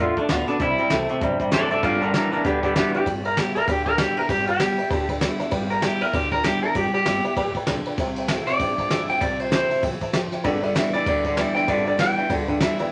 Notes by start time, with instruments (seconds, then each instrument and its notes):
0.00 upright bass E2, steel-string acoustic guitar A2, clean electric guitar D3 A3 F4, honky-tonk piano A4 D5 F#5
0.17 clean electric guitar D3 A3 D4, honky-tonk piano A4 D5 A5, muted upright bass stroke, kick, closed hi-hat
0.28 upright bass D2, steel-string acoustic guitar D3 A3 B3 F#4, clean electric guitar D3 B3 F4, honky-tonk piano A4 D5 E5, snare, closed hi-hat
0.48 clean electric guitar D3 B3 D4, steel-string acoustic guitar B3 F#4, honky-tonk piano A4 D5 F#5, closed hi-hat
0.59 upright bass C2, clean electric guitar C3 G3 E4, steel-string acoustic guitar C3, honky-tonk piano C5 E5 G5, kick, closed hi-hat
0.78 clean electric guitar C3 G3, honky-tonk piano C5 E5 G5, closed hi-hat
0.90 upright bass C2, clean electric guitar C3 A3, steel-string acoustic guitar E3 A3 C4 E4, honky-tonk piano C5 E5 G5, snare, closed hi-hat
1.09 clean electric guitar C3 A3, steel-string acoustic guitar C4 E4, honky-tonk piano C5 E5 G5, muted upright bass stroke, closed hi-hat
1.21 upright bass B1, steel-string acoustic guitar G2, clean electric guitar C3 G3, honky-tonk piano C5 E5 G5, kick, closed hi-hat
1.40 clean electric guitar C3 G3, honky-tonk piano C5 E5 G5, kick, closed hi-hat
1.51 upright bass A1, clean electric guitar C3 A3 A4 D5, steel-string acoustic guitar E3 A3 C4 E4, honky-tonk piano E5, snare, closed hi-hat
1.70 clean electric guitar C3 A3 A4 D5, steel-string acoustic guitar C4 E4, honky-tonk piano C5 E5 G5, muted upright bass stroke, closed hi-hat
1.83 upright bass G1, clean electric guitar G2 D3 F4 D5, steel-string acoustic guitar G3, honky-tonk piano B4 D5 G5, kick, closed hi-hat
2.01 clean electric guitar G2 D3 D4 A#4, honky-tonk piano B4 D5 G5, closed hi-hat
2.13 clean electric guitar G2 E3 D4 A#4, steel-string acoustic guitar G3 E4, honky-tonk piano B4 D5 G5, snare, closed hi-hat
2.32 clean electric guitar G2 E3 D4 A#4, steel-string acoustic guitar B3 E4, honky-tonk piano B4 D5 G5, muted upright bass stroke, closed hi-hat
2.44 upright bass D2, clean electric guitar G2 D3 B3 G4, steel-string acoustic guitar D3, honky-tonk piano B4 D5 G5, kick, closed hi-hat
2.62 clean electric guitar G2 D3 B3 G4, honky-tonk piano B4 D5 G5, kick, closed hi-hat
2.75 clean electric guitar G2 E3 B3 G4, steel-string acoustic guitar G3 B3 E4, honky-tonk piano B4 D5 A5, snare, closed hi-hat
2.94 clean electric guitar G2 E3 G4, steel-string acoustic guitar B3 E4, honky-tonk piano B4 D5 G5, muted upright bass stroke, closed hi-hat
3.06 upright bass G1, steel-string acoustic guitar G3, honky-tonk piano B4 D5 G5, kick, ride
3.25 clean electric guitar A#4, honky-tonk piano B4 D5 E5, ride
3.37 steel-string acoustic guitar G3 B3 E4, clean electric guitar G4, honky-tonk piano B4 D5 A5, snare, ride
3.55 steel-string acoustic guitar B3 E4, clean electric guitar A#4, honky-tonk piano B4 D5 A5, muted upright bass stroke, ride
3.68 upright bass D2, steel-string acoustic guitar D3, clean electric guitar G4, honky-tonk piano B4 D5 G5, kick, ride
3.86 clean electric guitar A#4, honky-tonk piano B4 D5 G5, kick, ride
3.98 steel-string acoustic guitar G3 B3 E4, clean electric guitar G4, honky-tonk piano B4 D5 G5, snare, ride
4.17 steel-string acoustic guitar B3 E4, clean electric guitar A#4, honky-tonk piano B4 D5 A5, muted upright bass stroke, ride
4.29 upright bass G1, steel-string acoustic guitar G3, clean electric guitar G4, honky-tonk piano B4 D5 G5, kick, ride
4.47 clean electric guitar G4, honky-tonk piano B4 D5 A5, ride
4.60 steel-string acoustic guitar G3 B3 E4, honky-tonk piano B4 D5 A5, snare, ride
4.78 steel-string acoustic guitar B3 E4, honky-tonk piano B4 D5 E5, muted upright bass stroke, ride
4.90 upright bass D2, steel-string acoustic guitar D3, honky-tonk piano B4 D5 A5, kick, ride
5.09 honky-tonk piano B4 D5 G5, kick, ride
5.21 steel-string acoustic guitar G3 B3 E4, honky-tonk piano B4 D5 G5, snare, ride
5.39 steel-string acoustic guitar B3 E4, honky-tonk piano B4 D5 A5, muted upright bass stroke, snare, ride
5.51 upright bass G1, steel-string acoustic guitar G3, honky-tonk piano B4 D5 G5, kick, ride
5.70 clean electric guitar A#4, honky-tonk piano B4 D5 G5, ride
5.82 steel-string acoustic guitar G3 B3 E4, clean electric guitar G4, honky-tonk piano B4 D5 A5, snare, ride
6.01 steel-string acoustic guitar B3 E4, clean electric guitar A#4, honky-tonk piano B4 D5 G5, muted upright bass stroke, ride
6.13 upright bass D2, steel-string acoustic guitar D3, clean electric guitar G4, honky-tonk piano B4 D5 G5, kick, ride
6.32 clean electric guitar A#4, honky-tonk piano B4 D5 G5, kick, ride
6.43 steel-string acoustic guitar G3 B3 E4, clean electric guitar G4, honky-tonk piano B4 D5 G5, snare, ride
6.63 steel-string acoustic guitar B3 E4, clean electric guitar A#4, honky-tonk piano B4 D5 A5, muted upright bass stroke, ride
6.75 upright bass G1, steel-string acoustic guitar G3, clean electric guitar G4, honky-tonk piano B4 D5 G5, kick, ride
6.93 clean electric guitar G4, honky-tonk piano B4 D5 G5, muted upright bass stroke, ride
7.05 upright bass G1, steel-string acoustic guitar G3 B3 E4, honky-tonk piano B4 D5 G5, snare, ride
7.24 steel-string acoustic guitar E4, honky-tonk piano B4 D5 G5, muted upright bass stroke, ride
7.37 upright bass A1, steel-string acoustic guitar A2, honky-tonk piano B4 D5 G5, kick, ride
7.55 honky-tonk piano B4 D5 G5, muted upright bass stroke, kick, ride
7.67 upright bass B1, steel-string acoustic guitar D3, honky-tonk piano B4 D5 G5, snare, ride
7.85 honky-tonk piano B4 D5 G5, muted upright bass stroke, ride
7.97 upright bass C2, steel-string acoustic guitar C3, honky-tonk piano C5 E5 G5, kick, ride
8.16 honky-tonk piano C5 E5 G5, ride
8.28 steel-string acoustic guitar E3 A3 C4 E4, honky-tonk piano C5 E5 G5, snare, ride
8.47 steel-string acoustic guitar C4 E4, honky-tonk piano C5 E5 G5, clean electric guitar D5, muted upright bass stroke, ride
8.59 upright bass G1, steel-string acoustic guitar G2, honky-tonk piano C5 E5 G5, kick, ride
8.78 honky-tonk piano C5 E5 A5, kick, ride
8.90 steel-string acoustic guitar E3 A3 C4 E4, honky-tonk piano C5 E5 G5, snare, ride
9.08 steel-string acoustic guitar C4 E4, honky-tonk piano C5 E5 G5, clean electric guitar G5, muted upright bass stroke, ride
9.20 upright bass C2, steel-string acoustic guitar C3, honky-tonk piano C5 E5 G5, clean electric guitar D5, kick, ride
9.39 clean electric guitar C5, honky-tonk piano C5 E5 G5, ride
9.51 steel-string acoustic guitar E3 A3 C4 E4, honky-tonk piano C5 E5 A5, clean electric guitar C5, snare, ride
9.69 steel-string acoustic guitar C4 E4, honky-tonk piano C5 E5 A5, muted upright bass stroke, ride
9.81 upright bass B1, steel-string acoustic guitar E3, honky-tonk piano C5 E5 G5, kick, ride
10.01 honky-tonk piano C5 E5 A5, muted upright bass stroke, kick, ride
10.13 upright bass A1, steel-string acoustic guitar F3, honky-tonk piano C5 E5 G5, snare, ride
10.32 honky-tonk piano C5 E5 G5, muted upright bass stroke, snare, ride
10.44 upright bass G1, clean electric guitar G2 D3, steel-string acoustic guitar G3, honky-tonk piano B4 D5 G5, kick, ride
10.62 clean electric guitar G2 D3, honky-tonk piano B4 D5 E5, ride
10.75 clean electric guitar G2 E3, steel-string acoustic guitar G3 B3 E4, honky-tonk piano B4 D5 G5, snare, ride
10.93 clean electric guitar G2 E3 D5, steel-string acoustic guitar B3 E4, honky-tonk piano B4 D5 G5, muted upright bass stroke, ride
11.06 upright bass D2, clean electric guitar G2 D3, steel-string acoustic guitar D3, honky-tonk piano B4 D5 G5, kick, ride
11.24 clean electric guitar G2 D3, honky-tonk piano B4 D5 G5, kick, ride
11.36 clean electric guitar G2 E3, steel-string acoustic guitar G3 B3 E4, honky-tonk piano B4 D5 G5, snare, ride
11.55 clean electric guitar G2 E3 G5, steel-string acoustic guitar B3 E4, honky-tonk piano B4 D5 G5, ride
11.68 upright bass G1, clean electric guitar G2 D3 D5, steel-string acoustic guitar G3, honky-tonk piano B4 D5 E5, kick, ride
11.86 clean electric guitar G2 D3 D5, honky-tonk piano B4 D5 G5, ride
11.98 clean electric guitar G2 E3 G5, steel-string acoustic guitar G3 B3 E4, honky-tonk piano B4 D5, snare, ride
12.16 clean electric guitar G2 E3, steel-string acoustic guitar B3 E4, honky-tonk piano B4 D5 G5, muted upright bass stroke, ride
12.29 upright bass D2, clean electric guitar G2 D3, steel-string acoustic guitar D3, honky-tonk piano B4 D5 G5, kick, ride
12.48 clean electric guitar G2 D3, honky-tonk piano B4 D5 G5, kick, ride
12.60 clean electric guitar G2 E3, steel-string acoustic guitar G3 B3 E4, honky-tonk piano B4 D5 A5, snare, ride
12.79 clean electric guitar G2 E3, steel-string acoustic guitar B3 E4, honky-tonk piano B4 D5 G5, muted upright bass stroke, snare, ride